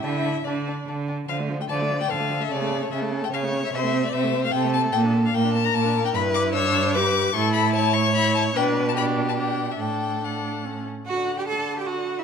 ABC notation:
X:1
M:3/4
L:1/16
Q:1/4=148
K:Dm
V:1 name="Violin"
e4 d4 z4 | f3 g a3 g f3 e | d3 ^c e3 g f3 e | c3 d e3 f g2 a2 |
g3 f g2 a b a3 g | [K:D] b2 d'2 e'4 d'4 | c'2 b2 a2 c'2 b2 a2 | g3 a b3 a g3 e |
g4 f6 z2 | f d f d f d f d f d f d |]
V:2 name="Violin"
D2 D2 D2 D2 D2 D2 | z4 d4 A4- | A4 A4 ^c4 | e4 c4 A4- |
A4 B8 | [K:D] B4 c4 B4 | A4 c8 | B4 G8 |
A8- A2 z2 | f3 g a3 g f3 e |]
V:3 name="Viola"
E4 D4 z4 | F, A, F, A, F, A, F, A, F, A, F, A, | ^C A, C A, C A, C A, C A, C A, | C A, C A, C A, C A, C A, C A, |
B, D B, D B, D B, D B, D B, D | [K:D] E4 D4 G4 | E8 E4 | D4 D4 D4 |
D4 D4 C2 z2 | D,12 |]
V:4 name="Cello" clef=bass
D,4 D,4 D,4 | D,4 D,4 D,4 | ^C,4 C,4 C,4 | C,4 C,4 C,4 |
B,,4 B,,4 B,,4 | [K:D] G,,12 | A,,12 | B,,12 |
A,,8- A,,2 z2 | F3 G A3 G F3 E |]